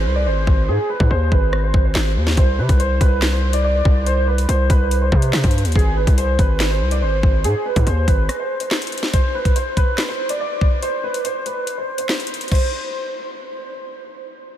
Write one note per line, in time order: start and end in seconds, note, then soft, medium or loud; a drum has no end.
0.00 0.14 C5 medium
0.05 0.28 C2 loud
0.16 0.25 D5 medium
0.26 0.46 G#1 medium
0.26 0.66 C5 medium
0.47 0.70 G#1 loud
0.47 kick loud
0.68 0.78 G#2 loud
0.68 0.88 G#4 medium
0.90 1.09 B4 medium
1.00 1.10 G#2 loud
1.00 kick medium
1.11 1.31 D#2 loud
1.11 1.30 C5 medium
1.32 1.72 G#1 loud
1.32 1.62 B4 medium
1.32 kick medium
1.53 cross-stick loud
1.63 1.83 C5 medium
1.74 1.94 G#1 loud
1.74 kick loud
1.85 2.34 C5 medium
1.95 2.18 G#1 loud
1.95 snare loud
1.95 clap loud
2.16 2.36 D#2 loud
2.27 snare medium
2.37 2.60 C2 loud
2.37 2.57 C5 medium
2.37 kick loud
2.37 closed hi-hat medium
2.58 2.69 C3 medium
2.58 2.78 B4 medium
2.69 3.00 C2 loud
2.69 kick medium
2.69 closed hi-hat medium
2.80 2.99 C5 medium
2.80 closed hi-hat medium
3.01 3.82 C2 loud
3.01 3.31 B4 medium
3.01 kick medium
3.01 closed hi-hat medium
3.22 snare loud
3.22 clap loud
3.22 closed hi-hat medium
3.33 3.52 C5 medium
3.53 3.63 D5 medium
3.53 closed hi-hat medium
3.64 4.04 D5 medium
3.85 4.46 C2 loud
3.85 kick loud
4.06 4.26 C5 medium
4.06 closed hi-hat medium
4.27 4.47 B4 medium
4.38 closed hi-hat medium
4.49 4.69 C2 loud
4.49 4.68 C5 medium
4.49 closed hi-hat medium
4.70 5.10 C2 loud
4.70 5.00 B4 medium
4.70 kick medium
4.70 closed hi-hat medium
4.91 closed hi-hat medium
5.01 5.21 C5 medium
5.12 5.32 C3 loud
5.12 kick loud
5.22 5.72 C5 medium
5.22 closed hi-hat medium
5.33 5.43 C3 loud
5.33 snare loud
5.33 clap loud
5.44 5.66 G2 loud
5.44 kick loud
5.44 closed hi-hat medium
5.51 closed hi-hat medium
5.58 closed hi-hat medium
5.65 5.75 D#2 loud
5.65 closed hi-hat medium
5.72 6.06 G#1 loud
5.72 5.95 G#4 loud
5.72 kick loud
5.72 closed hi-hat medium
5.79 closed hi-hat medium
5.97 6.16 B4 medium
6.07 6.38 C2 loud
6.07 kick medium
6.07 closed hi-hat medium
6.18 6.37 C5 medium
6.18 closed hi-hat medium
6.39 6.82 G#1 loud
6.39 6.69 B4 medium
6.39 kick medium
6.39 closed hi-hat medium
6.60 snare loud
6.60 clap medium
6.60 closed hi-hat medium
6.70 6.90 C5 medium
6.81 7.04 C2 loud
6.91 7.01 D5 medium
6.91 closed hi-hat medium
7.02 7.22 G#1 medium
7.02 7.42 C5 medium
7.23 7.46 G#1 loud
7.23 kick loud
7.44 7.54 G#2 medium
7.44 7.64 G#4 medium
7.44 closed hi-hat medium
7.65 7.85 B4 medium
7.76 7.86 G#2 loud
7.76 kick medium
7.76 closed hi-hat medium
7.87 8.07 D#2 loud
7.87 8.06 C5 medium
7.87 closed hi-hat medium
8.08 8.28 G#1 loud
8.08 8.38 B4 medium
8.08 kick medium
8.08 closed hi-hat medium
8.29 cross-stick medium
8.29 closed hi-hat medium
8.40 8.59 C5 medium
8.60 9.10 C5 medium
8.60 closed hi-hat medium
8.71 snare loud
8.71 clap loud
8.82 closed hi-hat medium
8.87 closed hi-hat medium
8.92 closed hi-hat medium
8.98 closed hi-hat medium
9.03 snare medium
9.13 9.33 C5 medium
9.13 kick loud
9.13 closed hi-hat medium
9.35 9.54 B4 medium
9.45 kick medium
9.45 closed hi-hat medium
9.56 9.75 C5 medium
9.56 closed hi-hat medium
9.77 10.07 B4 medium
9.77 kick medium
9.77 closed hi-hat medium
9.98 snare loud
9.98 clap medium
9.98 closed hi-hat medium
10.08 10.28 C5 medium
10.29 10.39 D5 medium
10.29 closed hi-hat medium
10.40 10.80 D5 medium
10.61 kick loud
10.82 11.02 C5 medium
10.82 closed hi-hat medium
11.04 11.23 B4 medium
11.14 closed hi-hat medium
11.25 11.44 C5 medium
11.25 closed hi-hat medium
11.46 11.76 B4 medium
11.46 closed hi-hat medium
11.67 closed hi-hat medium
11.78 11.97 C5 medium
11.98 12.48 C5 medium
11.98 closed hi-hat medium
12.09 snare loud
12.09 clap loud
12.20 closed hi-hat medium
12.27 closed hi-hat medium
12.34 closed hi-hat medium
12.41 closed hi-hat medium
12.48 13.74 C5 medium
12.48 kick loud
12.48 closed hi-hat medium
12.48 crash medium
12.55 closed hi-hat medium